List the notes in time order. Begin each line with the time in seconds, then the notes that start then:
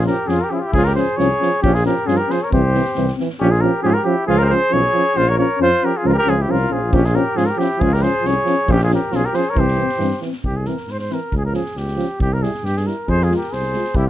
0.04 F3 C#4 A#4, snare
0.09 G4
0.27 F2 F3 C#4 G#4, snare
0.31 F4
0.41 G4 A#4
0.50 F3 C#4 E4 G4
0.55 F4 G#4
0.62 G4
0.66 E4
0.73 C#2 F3 C#4 G#4, kick
0.78 F4
0.85 G4 A#4, snare
0.95 F3 C#4 G#4 C5, snare
1.17 C2 F3 C#4 G#4 C#5, snare
1.40 F3 C#4, snare
1.62 A#1 F3 C#4 G4, kick
1.74 F4 G#4, snare
1.84 F3 C#4 G4 A#4, snare
2.06 G2 F3 C#4 F4 G#4, snare
2.17 G4 A#4
2.26 F3 C#4 G#4, snare
2.31 C5
2.42 A#4 C#5
2.51 C2 E3 C4 G4 C5, kick
2.73 E3 C4, snare
2.85 snare
2.95 C2 E3 C4, snare
3.08 snare
3.16 E3 C4, snare
3.30 snare
3.40 A#1 F3 C#4 G4
3.51 F4 G#4
3.61 F3 C#4 G4 A#4
3.83 G#2 F3 C#4 F4 G4 G#4
3.88 E4 F4 G#4
3.94 G4 A#4
4.04 F3 C#4 E4 G4
4.27 C#2 F3 C#4 F4 G#4
4.38 G4 A#4 C5
4.45 G4 G#4 A#4
4.49 F3 C#4 G#4 C5
4.70 B1 F3 C#4 G#4 C#5
4.93 F3 C#4
5.15 A#1 F3 C#4 F4 C5
5.29 A#4 C#5
5.37 F3 C#4 A#4 C#5
5.58 F2 F3 C#4
5.62 F4 C5
5.82 F3 C#4 G4 A#4
5.97 F4 G#4
6.03 C#2 F3 C#4
6.07 F4 A#4
6.12 G4 A#4
6.18 G4 A#4
6.25 C#2 F3 C#4
6.29 F4 G#4
6.39 E4 G4
6.48 C2 F3 C#4 A#4
6.52 F4
6.68 A#1 F3 C#4 G#4
6.73 F4
6.91 A#1 F3 C#4 G4, kick
6.95 C#4
7.04 F4 G#4, snare
7.13 F3 C#4 G4 A#4
7.35 G#2 F3 C#4 F4 G#4, snare
7.46 A#4
7.50 G4
7.57 F3 C#4 G4, snare
7.63 E4
7.79 C#2 F3 C#4 G#4, kick
7.83 F4
7.93 G4 A#4, snare
7.99 F3 C5, snare
8.04 C#4 G#4
8.21 F3
8.25 C2 C#4 G#4 C#5, snare
8.44 F3 C#4, snare
8.67 A#1 F3 C#4, kick
8.72 C#4 G4
8.80 F4 G#4, snare
8.89 F3 C#4, snare
8.94 G4 A#4
9.11 B1 F3 C#4 F4, snare
9.16 G#4
9.25 G4 A#4
9.32 F3 C5, snare
9.36 C#4 G#4
9.49 A#4 C#5
9.56 C2 E3 C4 C5, kick
9.60 G4
9.68 snare
9.76 E3
9.80 C4
9.89 snare
9.98 G2 E3, snare
10.03 C4
10.11 snare
10.21 E3, snare
10.25 C4
10.33 snare
10.44 C2 G4, kick
10.57 G#4
10.65 E3 C4 A#4, snare
10.77 snare
10.87 G#2 C5, snare
10.99 C5, snare
11.10 E3 C4, snare
11.14 A#4
11.32 C#2, kick
11.37 G#4
11.46 A#4
11.53 F3 C#4 G#4, snare
11.66 snare
11.76 C#2 G4, snare
11.88 snare
11.96 F3 C#4, snare
12.20 C2 G4, kick
12.33 A#4
12.41 G3 E4 G#4, snare
12.55 snare
12.63 G2 G4, snare
12.77 G#4, snare
12.84 G3 E4 A#4, snare
13.08 F2 G#4 C5, kick
13.20 F4 G#4, snare
13.28 G#3 F4, snare
13.36 G4 A#4
13.41 snare
13.50 C2 G#4 C5, snare
13.63 snare
13.74 G#3 F4, snare
13.84 snare
13.95 C2 E4 G4, kick